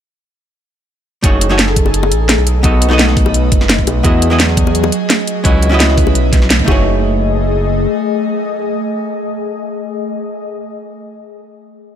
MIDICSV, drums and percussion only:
0, 0, Header, 1, 2, 480
1, 0, Start_track
1, 0, Tempo, 350877
1, 1694, Time_signature, 4, 2, 24, 8
1, 16359, End_track
2, 0, Start_track
2, 0, Title_t, "Drums"
2, 1693, Note_on_c, 9, 36, 118
2, 1694, Note_on_c, 9, 42, 83
2, 1830, Note_off_c, 9, 36, 0
2, 1831, Note_off_c, 9, 42, 0
2, 1934, Note_on_c, 9, 42, 96
2, 2059, Note_on_c, 9, 40, 34
2, 2070, Note_off_c, 9, 42, 0
2, 2173, Note_on_c, 9, 38, 120
2, 2173, Note_on_c, 9, 42, 85
2, 2195, Note_off_c, 9, 40, 0
2, 2298, Note_on_c, 9, 40, 35
2, 2310, Note_off_c, 9, 38, 0
2, 2310, Note_off_c, 9, 42, 0
2, 2413, Note_on_c, 9, 36, 105
2, 2414, Note_on_c, 9, 42, 95
2, 2435, Note_off_c, 9, 40, 0
2, 2540, Note_on_c, 9, 60, 48
2, 2550, Note_off_c, 9, 36, 0
2, 2551, Note_off_c, 9, 42, 0
2, 2653, Note_on_c, 9, 42, 85
2, 2676, Note_off_c, 9, 60, 0
2, 2778, Note_on_c, 9, 60, 65
2, 2790, Note_off_c, 9, 42, 0
2, 2894, Note_on_c, 9, 42, 94
2, 2915, Note_off_c, 9, 60, 0
2, 3031, Note_off_c, 9, 42, 0
2, 3134, Note_on_c, 9, 38, 126
2, 3134, Note_on_c, 9, 42, 84
2, 3271, Note_off_c, 9, 38, 0
2, 3271, Note_off_c, 9, 42, 0
2, 3375, Note_on_c, 9, 42, 98
2, 3512, Note_off_c, 9, 42, 0
2, 3613, Note_on_c, 9, 36, 121
2, 3614, Note_on_c, 9, 42, 83
2, 3750, Note_off_c, 9, 36, 0
2, 3751, Note_off_c, 9, 42, 0
2, 3854, Note_on_c, 9, 42, 91
2, 3980, Note_on_c, 9, 40, 36
2, 3991, Note_off_c, 9, 42, 0
2, 4094, Note_on_c, 9, 38, 125
2, 4094, Note_on_c, 9, 42, 83
2, 4117, Note_off_c, 9, 40, 0
2, 4220, Note_on_c, 9, 40, 36
2, 4231, Note_off_c, 9, 38, 0
2, 4231, Note_off_c, 9, 42, 0
2, 4333, Note_on_c, 9, 36, 112
2, 4333, Note_on_c, 9, 46, 76
2, 4357, Note_off_c, 9, 40, 0
2, 4458, Note_on_c, 9, 60, 57
2, 4470, Note_off_c, 9, 36, 0
2, 4470, Note_off_c, 9, 46, 0
2, 4573, Note_on_c, 9, 42, 82
2, 4595, Note_off_c, 9, 60, 0
2, 4710, Note_off_c, 9, 42, 0
2, 4812, Note_on_c, 9, 42, 95
2, 4813, Note_on_c, 9, 36, 112
2, 4939, Note_on_c, 9, 40, 51
2, 4949, Note_off_c, 9, 42, 0
2, 4950, Note_off_c, 9, 36, 0
2, 5054, Note_on_c, 9, 38, 127
2, 5054, Note_on_c, 9, 42, 85
2, 5075, Note_off_c, 9, 40, 0
2, 5179, Note_on_c, 9, 36, 66
2, 5191, Note_off_c, 9, 38, 0
2, 5191, Note_off_c, 9, 42, 0
2, 5295, Note_on_c, 9, 42, 95
2, 5300, Note_on_c, 9, 60, 57
2, 5316, Note_off_c, 9, 36, 0
2, 5432, Note_off_c, 9, 42, 0
2, 5437, Note_off_c, 9, 60, 0
2, 5534, Note_on_c, 9, 36, 126
2, 5534, Note_on_c, 9, 42, 81
2, 5670, Note_off_c, 9, 36, 0
2, 5670, Note_off_c, 9, 42, 0
2, 5774, Note_on_c, 9, 42, 89
2, 5900, Note_on_c, 9, 40, 34
2, 5910, Note_off_c, 9, 42, 0
2, 6015, Note_on_c, 9, 38, 127
2, 6015, Note_on_c, 9, 42, 79
2, 6037, Note_off_c, 9, 40, 0
2, 6142, Note_on_c, 9, 40, 34
2, 6152, Note_off_c, 9, 38, 0
2, 6152, Note_off_c, 9, 42, 0
2, 6254, Note_on_c, 9, 36, 113
2, 6256, Note_on_c, 9, 42, 92
2, 6279, Note_off_c, 9, 40, 0
2, 6389, Note_on_c, 9, 60, 55
2, 6390, Note_off_c, 9, 36, 0
2, 6393, Note_off_c, 9, 42, 0
2, 6495, Note_on_c, 9, 42, 82
2, 6526, Note_off_c, 9, 60, 0
2, 6616, Note_on_c, 9, 60, 65
2, 6632, Note_off_c, 9, 42, 0
2, 6735, Note_on_c, 9, 42, 92
2, 6753, Note_off_c, 9, 60, 0
2, 6872, Note_off_c, 9, 42, 0
2, 6975, Note_on_c, 9, 38, 127
2, 6975, Note_on_c, 9, 42, 82
2, 7112, Note_off_c, 9, 38, 0
2, 7112, Note_off_c, 9, 42, 0
2, 7216, Note_on_c, 9, 42, 89
2, 7352, Note_off_c, 9, 42, 0
2, 7454, Note_on_c, 9, 36, 123
2, 7455, Note_on_c, 9, 42, 77
2, 7591, Note_off_c, 9, 36, 0
2, 7592, Note_off_c, 9, 42, 0
2, 7695, Note_on_c, 9, 42, 87
2, 7822, Note_on_c, 9, 40, 32
2, 7831, Note_off_c, 9, 42, 0
2, 7936, Note_on_c, 9, 38, 124
2, 7936, Note_on_c, 9, 42, 78
2, 7959, Note_off_c, 9, 40, 0
2, 8063, Note_on_c, 9, 40, 34
2, 8073, Note_off_c, 9, 38, 0
2, 8073, Note_off_c, 9, 42, 0
2, 8175, Note_on_c, 9, 36, 112
2, 8177, Note_on_c, 9, 46, 75
2, 8200, Note_off_c, 9, 40, 0
2, 8300, Note_on_c, 9, 60, 52
2, 8311, Note_off_c, 9, 36, 0
2, 8313, Note_off_c, 9, 46, 0
2, 8416, Note_on_c, 9, 42, 79
2, 8437, Note_off_c, 9, 60, 0
2, 8553, Note_off_c, 9, 42, 0
2, 8655, Note_on_c, 9, 36, 113
2, 8657, Note_on_c, 9, 38, 37
2, 8657, Note_on_c, 9, 42, 91
2, 8782, Note_on_c, 9, 40, 46
2, 8792, Note_off_c, 9, 36, 0
2, 8794, Note_off_c, 9, 38, 0
2, 8794, Note_off_c, 9, 42, 0
2, 8897, Note_on_c, 9, 38, 127
2, 8897, Note_on_c, 9, 42, 79
2, 8919, Note_off_c, 9, 40, 0
2, 9020, Note_on_c, 9, 36, 69
2, 9034, Note_off_c, 9, 38, 0
2, 9034, Note_off_c, 9, 42, 0
2, 9135, Note_off_c, 9, 36, 0
2, 9135, Note_on_c, 9, 36, 119
2, 9139, Note_on_c, 9, 60, 58
2, 9272, Note_off_c, 9, 36, 0
2, 9275, Note_off_c, 9, 60, 0
2, 16359, End_track
0, 0, End_of_file